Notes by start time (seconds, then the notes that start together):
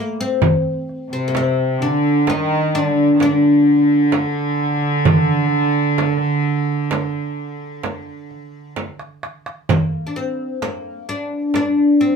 Already playing: A#3
0.20 C4
0.42 frame drum, darbuka dum
0.89 darbuka ka
1.10 C3 C4
1.28 A#3
1.35 C4, darbuka tek, frame drum
1.79 D3 D4, darbuka ka
2.27 D#3 D#4, darbuka tek, frame drum
2.75 D3 D4
3.13 D#3
3.20 D3 D4, darbuka tek, frame drum
4.12 darbuka tek, frame drum
4.61 darbuka ka
5.05 frame drum, darbuka dum
5.53 darbuka ka
5.98 darbuka tek, frame drum
6.46 darbuka ka
6.91 darbuka tek, frame drum
7.83 darbuka tek, frame drum
8.31 darbuka ka
8.76 darbuka tek, frame drum
8.99 darbuka ka
9.23 darbuka tek
9.46 darbuka ka
9.69 A#3, frame drum, darbuka dum
10.07 D4
10.16 C4
10.62 A#3, darbuka tek, frame drum
11.09 D4
11.54 D4, frame drum
12.01 C4